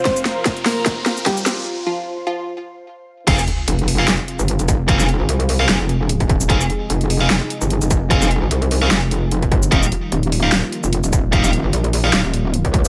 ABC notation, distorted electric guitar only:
X:1
M:4/4
L:1/16
Q:"Swing 16ths" 1/4=149
K:Fm
V:1 name="Distorted electric guitar"
z16 | z16 | [CAf] z6 [CAf] z8 | [CAf] z6 [CAf] z8 |
[CAf] z6 [CAf] z8 | [CAf] z6 [CAf] z8 | [EGf] z6 [EGf] z8 | [EGf] z6 [EGf] z8 |]